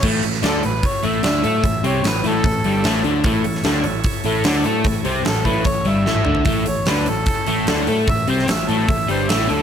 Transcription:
<<
  \new Staff \with { instrumentName = "Harmonica" } { \time 4/4 \key a \mixolydian \tempo 4 = 149 r4 a'8 b'8 cis''8 e''4.~ | e''8 cis''8 b'8 a'2 r8 | r1 | r4 a'8 b'8 cis''8 e''4.~ |
e''8 cis''8 b'8 a'2 r8 | e''8 c''8 e''8 a'8 e''8 c''8 e''8 a'8 | }
  \new Staff \with { instrumentName = "Tonewheel organ" } { \time 4/4 \key a \mixolydian <cis' e' a'>1~ | <cis' e' a'>1 | <e' a' cis''>1~ | <e' a' cis''>1 |
<cis' e' a'>1~ | <cis' e' a'>1 | }
  \new Staff \with { instrumentName = "Overdriven electric guitar" } { \clef bass \time 4/4 \key a \mixolydian <a, a>8 a,8 <d d'>8 a,8 r8 <a, a>8 <d d'>8 <a a'>8 | a,8 <c c'>8 a,8 <a, a>8 a,8 <g, g>8 <a, a>8 <d d'>8 | <a, a>8 a,8 <d d'>8 a,8 r8 <a, a>8 <d d'>8 <a a'>8 | a,8 <c c'>8 a,8 <a, a>8 a,8 <g, g>8 <a, a>8 <d d'>8 |
<a, a>8 a,8 <d d'>8 a,8 r8 <a, a>8 <d d'>8 <a a'>8 | a,8 <c c'>8 a,8 <a, a>8 a,8 <g, g>8 <a, a>8 <d d'>8 | }
  \new Staff \with { instrumentName = "Picked electric bass" } { \clef bass \time 4/4 \key a \mixolydian a,,8 a,,8 d,8 a,,8 r8 a,,8 d,8 a,8 | a,,8 c,8 a,,8 a,,8 a,,8 g,,8 a,,8 d,8 | a,,8 a,,8 d,8 a,,8 r8 a,,8 d,8 a,8 | a,,8 c,8 a,,8 a,,8 a,,8 g,,8 a,,8 d,8 |
a,,8 a,,8 d,8 a,,8 r8 a,,8 d,8 a,8 | a,,8 c,8 a,,8 a,,8 a,,8 g,,8 a,,8 d,8 | }
  \new DrumStaff \with { instrumentName = "Drums" } \drummode { \time 4/4 <cymc bd>8 hho16 sn16 <hho sn>8 hho8 <hho bd>8 hho8 <hho sn>8 hho8 | <hho bd>8 hho8 <hho sn>8 hho8 <hho bd>8 hho8 <hho sn>8 hho8 | <hho bd>8 hho16 sn16 <hho sn>8 hho8 <hho bd>8 hho8 <hho sn>8 hho8 | <hho bd>8 hho8 <hho sn>8 <hho bd>8 <hho bd>8 hho8 sn16 tommh16 toml16 tomfh16 |
<hho bd>8 hho8 <hho sn>8 hho8 <hho bd>8 hho8 <hho sn>8 hho8 | <hho bd>8 hho16 sn16 <hho sn>8 hho8 <hho bd>8 hho8 <hho sn>8 hho8 | }
>>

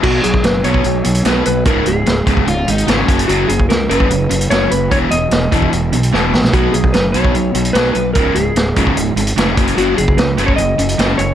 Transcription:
<<
  \new Staff \with { instrumentName = "Electric slide guitar" } { \time 4/4 \key ces \lydian \tempo 4 = 148 ges'8 aes'8 ces''8 des''4. ces''8 ces''8 | bes'8 aes'4. r2 | ges'8 aes'8 bes'8 ces''4. des''8 ces''8 | des''8 ees''4. r2 |
ges'8 aes'8 ces''8 des''4. ces''8 ces''8 | bes'8 aes'4. r2 | ges'8 aes'8 ces''8. des''16 ees''4. des''8 | }
  \new Staff \with { instrumentName = "Electric slide guitar" } { \time 4/4 \key ces \lydian r1 | r2 f'8 ees'8 des'8. r16 | r1 | r1 |
r1 | r1 | r1 | }
  \new Staff \with { instrumentName = "Overdriven electric guitar" } { \clef bass \time 4/4 \key ces \lydian <ces ges ces'>8 <ces ges>8 <ces ges>8 <ces ges ces'>8 <ces ges>8 <ces ges>8 <ces ges ces'>8 <ces ges>8 | <des, aes, des>8 <des, aes,>8 <des, aes,>8 <des, aes, des>8 <des, aes,>8 <des, aes,>8 <des, aes, des>8 <ges, des ges>8 | <ges, des ges>8 <ges, des>8 <ges, des>8 <ges, des ges>8 <ges, des>8 <ges, des>8 <ges, des ges>8 <ges, des>8 | <e, b, e>8 <e, b,>8 <e, b,>8 <e, b, e>8 <e, b,>8 <e, b,>8 <e, b, e>8 <e, b,>8 |
<ces ges ces'>8 <ces ges>8 <ces ges>8 <ces ges ces'>8 <ces ges>8 <ces ges>8 <ces ges ces'>8 <ces ges>8 | <des, aes, des>8 <des, aes,>8 <des, aes,>8 <des, aes, des>8 <des, aes,>8 <des, aes,>8 <des, aes, des>8 <ges, des ges>8 | <ges, des ges>8 <ges, des>8 <ges, des>8 <ges, des ges>8 <ges, des>8 <ges, des>8 <ges, des ges>8 <ges, des>8 | }
  \new Staff \with { instrumentName = "Overdriven electric guitar" } { \clef bass \time 4/4 \key ces \lydian <ces ges ces'>8 <ces ges>8 <ces ges>8 <ces ges ces'>8 <ces ges>8 <ces ges>8 <ces ges ces'>8 <ces ges>8 | <des, aes, des>8 <des, aes,>8 <des, aes,>8 <des, aes, des>8 <des, aes,>8 <des, aes,>8 <des, aes, des>8 <ges, des ges>8 | <ges, des ges>8 <ges, des>8 <ges, des>8 <ges, des ges>8 <ges, des>8 <ges, des>8 <ges, des ges>8 <ges, des>8 | <e, b, e>8 <e, b,>8 <e, b,>8 <e, b, e>8 <e, b,>8 <e, b,>8 <e, b, e>8 <e, b,>8 |
<ces ges ces'>8 <ces ges>8 <ces ges>8 <ces ges ces'>8 <ces ges>8 <ces ges>8 <ces ges ces'>8 <ces ges>8 | <des, aes, des>8 <des, aes,>8 <des, aes,>8 <des, aes, des>8 <des, aes,>8 <des, aes,>8 <des, aes, des>8 <ges, des ges>8 | <ges, des ges>8 <ges, des>8 <ges, des>8 <ges, des ges>8 <ges, des>8 <ges, des>8 <ges, des ges>8 <ges, des>8 | }
  \new Staff \with { instrumentName = "Fingered electric bass" } { \clef bass \time 4/4 \key ces \lydian ces,8 ces,8 ges,,8 ces,8 ces,8 ces,8 ces,8 ces,8 | des,,8 des,,8 des,,8 des,,8 des,,8 aes,,8 aes,,8 ges,,8 | ges,,8 ges,,8 des,8 ges,,8 ges,,8 ges,,8 ges,,8 ges,,8 | e,,8 e,,8 e,,8 e,,8 e,,8 b,,8 e,,8 bes,,8 |
ces,8 ces,8 ges,,8 ces,8 ces,8 ces,8 ces,8 ces,8 | des,,8 des,,8 des,,8 des,,8 des,,8 aes,,8 f,,8 ges,,8 | ges,,8 ges,,8 des,8 ges,,8 ges,,8 ges,,8 ges,,8 ges,,8 | }
  \new DrumStaff \with { instrumentName = "Drums" } \drummode { \time 4/4 <cymc bd>8 hh16 bd16 <hh sn>8 hh16 bd16 hh8 hh16 hh16 <hh sn>8 hh8 | <hh bd>8 hh8 <hh sn>8 <hh bd>16 bd16 hh8 hh16 hh16 <hh sn>8 <hh bd>16 hh16 | hh8 hh16 bd16 <hh sn>8 hh16 bd16 hh8 hh16 hh16 <hh sn>8 hh8 | <hh bd>8 hh8 <hh sn>8 <hh bd>16 bd16 hh8 hh16 hh16 sn8 sn16 sn16 |
<hh bd>8 hh16 bd16 <hh sn>8 hh16 bd16 hh8 hh16 hh16 <hh sn>8 hh8 | <hh bd>8 hh8 <hh sn>8 <hh bd>16 bd16 hh8 hh16 hh16 <hh sn>8 <hh bd>16 hh16 | hh8 hh16 bd16 <hh sn>8 hh16 bd16 hh8 hh16 hh16 <hh sn>8 hh8 | }
>>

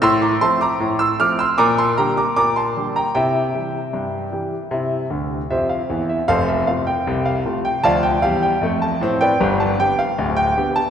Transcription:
<<
  \new Staff \with { instrumentName = "Grand piano" } { \time 2/4 \key f \major \tempo 4 = 77 <c''' e'''>16 <bes'' d'''>16 <a'' c'''>16 <bes'' d'''>8 <c''' e'''>16 <d''' f'''>16 <c''' e'''>16 | <bes'' d'''>16 <a'' c'''>16 <g'' bes''>16 <bes'' d'''>16 <bes'' d'''>16 <a'' c'''>8 <g'' bes''>16 | <e'' g''>2~ | <e'' g''>4 <g' c'' e''>16 f''8 e''16 |
<a' c'' f''>16 e''16 f''16 g''8 f''8 g''16 | <d'' f'' a''>16 g''16 f''16 g''8 a''8 <b' d'' g''>16~ | <b' d'' g''>16 a''16 g''16 f''8 g''8 a''16 | }
  \new Staff \with { instrumentName = "Grand piano" } { \clef bass \time 2/4 \key f \major a,8 <f a c'>8 a,8 <f a c'>8 | bes,8 <d g g'>8 bes,8 <d g g'>8 | <c e'>8 <e g g'>8 g,8 <e g g'>8 | <c e'>8 <d, d>8 <f, f>8 <e, e>8 |
<f,, f,>8 <c a f'>8 <c, c>8 <c a f'>8 | <d, f>8 <e, g>8 <f, a>8 <a, c'>8 | <g,, g,>8 <d b g'>8 <d,, d,>8 <d b g'>8 | }
>>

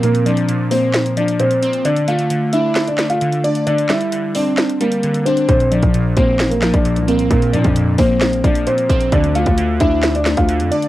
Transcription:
<<
  \new Staff \with { instrumentName = "Felt piano" } { \time 4/4 \key bes \lydian \tempo 4 = 132 <bes bes'>8 <d' d''>4 <c' c''>4 <d' d''>8 <c' c''>4 | <d' d''>8 <f' f''>4 <e' e''>8. <d' d''>8 <f' f''>8. <d' d''>8 | <d' d''>8 <e' e''>4 <d' d''>4 <bes bes'>4 <c' c''>8 | <c' c''>8 <d' d''>4 <c' c''>8. <bes bes'>8 <d' d''>8. <bes bes'>8 |
<bes bes'>8 <d' d''>4 <c' c''>4 <d' d''>8 <c' c''>4 | <d' d''>8 <f' f''>4 <e' e''>8. <d' d''>8 <f' f''>8. <d' d''>8 | }
  \new Staff \with { instrumentName = "Synth keys" } { \clef bass \time 4/4 \key bes \lydian <bes, f c'>8 f8 bes,8 bes4 f8 bes,8 c'8 | d8 a8 d8 d'4 a8 d8 d''8 | d8 g8 d8 c'4 g8 d8 d'8 | bes,8 f8 bes,8 bes4 f8 bes,8 c'8 |
bes,8 f8 bes,8 bes4 f8 bes,8 c'8 | d8 a8 d8 d'4 a8 d8 d''8 | }
  \new Staff \with { instrumentName = "808-style bass" } { \clef bass \time 4/4 \key bes \lydian r1 | r1 | r1 | bes,,8. bes,,8. bes,,8 a,,16. bes,,16. bes,,8 c,8. |
bes,,8 bes,16 f,8. bes,,4 bes,,8 r8 bes,,8 | d,8. d,8. d,4~ d,16 d,8 f,16 r8 | }
  \new DrumStaff \with { instrumentName = "Drums" } \drummode { \time 4/4 hh16 hh16 hh16 hh16 hh8 hho8 <hc hh sn>16 hh16 hh16 hh16 hh16 hh16 hh16 hh16 | hh16 hh16 hh16 hh16 hh8 hh8 <hc hh sn>16 hh16 <hc hh sn>16 hh16 hh16 hh16 hh16 hh16 | hh16 hh16 <hc hh sn>16 hh16 hh8 hho8 <hc hh sn>16 hh16 hh16 hh16 hh16 hh16 hh16 hh16 | <hh bd>16 hh16 hh16 <hh bd>16 hh8 <hh bd>8 <hc hh sn>16 hh16 <hc hh sn>16 <hh bd>16 hh16 hh16 hh16 hh16 |
<hh bd>16 hh16 hh16 <hh bd>16 hh8 <hho bd>8 <hc hh sn>16 hh16 <hh bd>16 hh16 hh16 hh16 <hh bd>16 hh16 | <hh bd>16 hh16 hh16 <hh bd>16 hh8 <hh bd>8 <hc hh sn>16 hh16 <hc hh sn>16 <hh bd>16 hh16 hh16 hh16 hh16 | }
>>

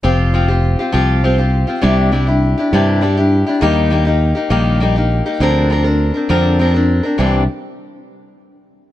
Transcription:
<<
  \new Staff \with { instrumentName = "Steel-string acoustic guitar" } { \time 6/8 \key f \major \tempo 4. = 67 <f c' f' g'>8 <f c' f' g'>16 <c' f' g'>8 <c' f' g'>16 <f c' f' g'>8 <f c' f' g'>16 <c' f' g'>8 <c' f' g'>16 | <c g d' e' g'>8 <g d' e' g'>16 <d' e' g'>8 <d' e' g'>16 <c g d' e' g'>8 <g d' e' g'>16 <d' e' g'>8 <d' e' g'>16 | <ees g bes ees' g'>8 <g bes ees' g'>16 <bes ees' g'>8 <bes ees' g'>16 <ees g bes ees' g'>8 <g bes ees' g'>16 <bes ees' g'>8 <bes ees' g'>16 | <d f c' d' bes'>8 <f c' d' bes'>16 <c' d' bes'>8 <c' d' bes'>16 <d f c' d' bes'>8 <f c' d' bes'>16 <c' d' bes'>8 <c' d' bes'>16 |
<c e g c' d' g'>8 r2 r8 | }
  \new Staff \with { instrumentName = "Fingered electric bass" } { \clef bass \time 6/8 \key f \major f,,4. c,4. | c,4. g,4. | ees,4. bes,,4. | d,4. f,4. |
c,8 r2 r8 | }
>>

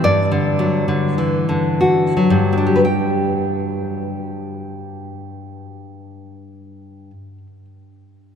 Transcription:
\new Staff \with { instrumentName = "Nylon-string guitar" } { \clef bass \time 3/4 \key d \mixolydian \tempo 4 = 65 << { d''4. r4. | <g, d' g' b' g''>2.~ | <g, d' g' b' g''>2. | } \\ { \tuplet 3/2 { g,8 d8 fis8 d8 e8 d8 fis'8 fis8 c'8 } | r2. | r2. | } >> }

